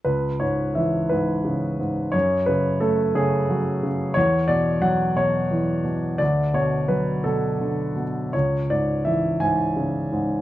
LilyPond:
<<
  \new Staff \with { instrumentName = "Grand piano" } { \time 6/8 \key cis \phrygian \tempo 4. = 57 b'8 cis''8 e''8 b'4. | cis''8 b'8 a'8 gis'4 r8 | cis''8 d''8 fis''8 cis''4. | d''8 cis''8 b'8 a'4 r8 |
cis''8 d''8 e''8 gis''4. | }
  \new Staff \with { instrumentName = "Grand piano" } { \clef bass \time 6/8 \key cis \phrygian cis,8 gis,8 e8 gis,8 cis8 gis,8 | fis,8 cis8 a8 cis8 fis8 cis8 | e,8 b,8 fis8 b,8 e8 b,8 | d,8 b,8 fis8 b,8 d8 b,8 |
cis,8 gis,8 e8 gis,8 cis8 gis,8 | }
>>